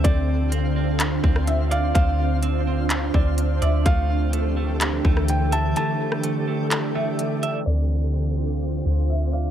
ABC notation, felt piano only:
X:1
M:4/4
L:1/8
Q:1/4=126
K:Dm
V:1 name="Felt piano"
d2 z4 e f | f2 z3 d2 e | f2 z4 g a | a2 z3 e3 |
d2 z4 e f |]